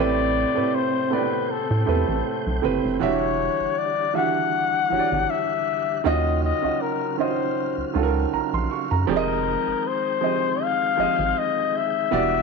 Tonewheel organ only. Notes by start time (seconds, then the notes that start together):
Already playing: C3 C4 G5
3.01 D3 G3 F#5
6.05 C#3 F#3 F5
9.09 D#3 G#3 G5
12.12 G3 D4 F#5